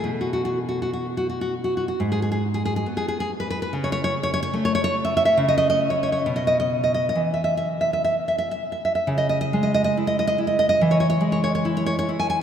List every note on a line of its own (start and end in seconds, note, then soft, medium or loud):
0.00 1.91 B2 soft
0.00 0.11 G#4 medium
0.21 0.32 F#4 soft
0.33 0.44 F#4 soft
0.45 0.58 F#4 medium
0.69 0.81 F#4 soft
0.82 0.92 F#4 soft
0.93 1.06 F#4 medium
1.17 1.28 F#4 soft
1.29 1.40 F#4 soft
1.41 1.53 F#4 medium
1.64 1.76 F#4 soft
1.77 1.87 F#4 soft
1.88 1.99 F#4 medium
2.00 2.84 G#2 medium
2.12 2.21 G#4 medium
2.22 2.30 G#4 medium
2.32 2.43 G#4 medium
2.54 2.64 G#4 medium
2.65 2.75 G#4 medium
2.76 2.87 G#4 medium
2.86 3.68 B3 soft
2.97 3.07 G#4 medium
3.08 3.19 G#4 medium
3.20 3.30 G#4 medium
3.40 3.49 B4 medium
3.50 3.61 B4 medium
3.62 3.73 B4 medium
3.73 4.52 C#3 medium
3.84 3.91 C#5 medium
3.92 4.03 C#5 medium
4.04 4.14 C#5 medium
4.23 4.32 C#5 medium
4.34 4.41 C#5 medium
4.43 4.54 C#5 medium
4.53 5.33 A3 soft
4.65 4.74 C#5 medium
4.75 4.83 C#5 medium
4.84 4.95 C#5 medium
5.05 5.16 E5 medium
5.17 5.24 E5 medium
5.25 5.37 E5 medium
5.38 6.22 C#3 medium
5.48 5.56 D#5 medium
5.58 5.68 D#5 medium
5.70 5.80 D#5 medium
5.90 6.02 C#5 medium
6.03 6.11 C#5 medium
6.12 6.24 C#5 medium
6.26 7.15 B2 medium
6.36 6.46 D#5 medium
6.47 6.59 D#5 medium
6.60 6.71 D#5 medium
6.84 6.93 D#5 medium
6.94 7.06 D#5 medium
7.09 7.20 D#5 medium
7.15 9.03 E3 soft
7.34 7.43 E5 soft
7.44 7.55 E5 medium
7.57 7.68 E5 medium
7.81 7.91 E5 medium
7.93 8.03 E5 medium
8.04 8.15 E5 medium
8.28 8.37 E5 soft
8.38 8.50 E5 medium
8.51 8.63 E5 medium
8.72 8.84 E5 soft
8.85 8.94 E5 soft
8.95 9.07 E5 medium
9.07 10.76 C#3 medium
9.18 9.28 D#5 medium
9.29 9.40 D#5 medium
9.41 9.52 D#5 medium
9.53 10.81 G#3 soft
9.63 9.73 D#5 medium
9.74 9.83 D#5 medium
9.84 9.96 D#5 medium
9.97 10.37 E4 soft
10.07 10.18 D#5 medium
10.19 10.26 D#5 medium
10.27 10.38 D#5 medium
10.38 10.81 E4 soft
10.47 10.58 D#5 medium
10.59 10.68 D#5 medium
10.69 10.80 D#5 medium
10.81 12.43 E3 medium
10.91 10.99 C#5 medium
11.00 11.08 C#5 medium
11.10 11.22 C#5 medium
11.21 12.43 G#3 medium
11.32 11.43 C#5 medium
11.44 11.54 C#5 medium
11.55 11.66 C#5 medium
11.65 12.07 E4 medium
11.77 11.85 C#5 medium
11.86 11.98 C#5 medium
11.99 12.10 C#5 medium
12.09 12.43 E4 soft
12.19 12.28 G#5 medium
12.30 12.40 G#5 medium